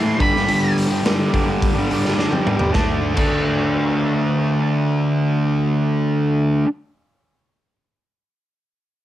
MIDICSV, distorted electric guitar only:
0, 0, Header, 1, 2, 480
1, 0, Start_track
1, 0, Tempo, 567644
1, 410, Time_signature, 4, 2, 24, 8
1, 7646, End_track
2, 0, Start_track
2, 0, Title_t, "Distorted electric guitar"
2, 0, Program_c, 0, 30
2, 0, Note_on_c, 0, 45, 85
2, 26, Note_on_c, 0, 57, 64
2, 64, Note_on_c, 0, 52, 50
2, 144, Note_off_c, 0, 57, 0
2, 145, Note_on_c, 0, 43, 99
2, 146, Note_off_c, 0, 45, 0
2, 163, Note_off_c, 0, 52, 0
2, 167, Note_on_c, 0, 50, 99
2, 179, Note_on_c, 0, 55, 113
2, 281, Note_off_c, 0, 55, 0
2, 291, Note_on_c, 0, 55, 72
2, 317, Note_off_c, 0, 50, 0
2, 327, Note_on_c, 0, 50, 58
2, 393, Note_off_c, 0, 43, 0
2, 403, Note_on_c, 0, 43, 85
2, 405, Note_off_c, 0, 50, 0
2, 415, Note_on_c, 0, 50, 95
2, 427, Note_off_c, 0, 55, 0
2, 437, Note_on_c, 0, 55, 99
2, 737, Note_off_c, 0, 55, 0
2, 747, Note_on_c, 0, 55, 70
2, 770, Note_off_c, 0, 50, 0
2, 780, Note_on_c, 0, 50, 52
2, 855, Note_off_c, 0, 43, 0
2, 865, Note_on_c, 0, 43, 76
2, 878, Note_off_c, 0, 50, 0
2, 888, Note_on_c, 0, 50, 99
2, 903, Note_off_c, 0, 55, 0
2, 913, Note_on_c, 0, 55, 95
2, 1092, Note_off_c, 0, 43, 0
2, 1102, Note_on_c, 0, 43, 67
2, 1108, Note_off_c, 0, 50, 0
2, 1118, Note_on_c, 0, 50, 71
2, 1126, Note_off_c, 0, 55, 0
2, 1136, Note_on_c, 0, 55, 73
2, 1217, Note_off_c, 0, 55, 0
2, 1227, Note_on_c, 0, 55, 63
2, 1258, Note_off_c, 0, 50, 0
2, 1268, Note_on_c, 0, 50, 57
2, 1466, Note_off_c, 0, 55, 0
2, 1475, Note_off_c, 0, 43, 0
2, 1477, Note_on_c, 0, 55, 62
2, 1497, Note_off_c, 0, 50, 0
2, 1507, Note_on_c, 0, 50, 56
2, 1584, Note_on_c, 0, 43, 66
2, 1604, Note_off_c, 0, 50, 0
2, 1614, Note_on_c, 0, 50, 67
2, 1615, Note_off_c, 0, 55, 0
2, 1625, Note_on_c, 0, 55, 80
2, 1689, Note_off_c, 0, 55, 0
2, 1699, Note_on_c, 0, 55, 64
2, 1736, Note_off_c, 0, 50, 0
2, 1746, Note_on_c, 0, 50, 57
2, 1797, Note_off_c, 0, 43, 0
2, 1808, Note_on_c, 0, 43, 80
2, 1820, Note_off_c, 0, 50, 0
2, 1830, Note_on_c, 0, 50, 86
2, 1831, Note_off_c, 0, 55, 0
2, 1842, Note_on_c, 0, 55, 84
2, 1926, Note_off_c, 0, 55, 0
2, 1936, Note_on_c, 0, 55, 67
2, 1963, Note_off_c, 0, 50, 0
2, 1973, Note_on_c, 0, 50, 51
2, 2042, Note_off_c, 0, 43, 0
2, 2052, Note_on_c, 0, 43, 78
2, 2065, Note_off_c, 0, 50, 0
2, 2075, Note_on_c, 0, 50, 68
2, 2080, Note_off_c, 0, 55, 0
2, 2090, Note_on_c, 0, 55, 85
2, 2160, Note_off_c, 0, 55, 0
2, 2171, Note_on_c, 0, 55, 63
2, 2193, Note_off_c, 0, 50, 0
2, 2203, Note_on_c, 0, 50, 55
2, 2283, Note_off_c, 0, 50, 0
2, 2293, Note_on_c, 0, 50, 81
2, 2295, Note_off_c, 0, 55, 0
2, 2296, Note_off_c, 0, 43, 0
2, 2309, Note_on_c, 0, 57, 81
2, 2327, Note_on_c, 0, 62, 105
2, 2650, Note_off_c, 0, 50, 0
2, 2653, Note_on_c, 0, 50, 81
2, 2663, Note_off_c, 0, 57, 0
2, 2667, Note_on_c, 0, 57, 92
2, 2680, Note_off_c, 0, 62, 0
2, 2684, Note_on_c, 0, 62, 105
2, 5613, Note_off_c, 0, 50, 0
2, 5626, Note_off_c, 0, 57, 0
2, 5643, Note_off_c, 0, 62, 0
2, 7646, End_track
0, 0, End_of_file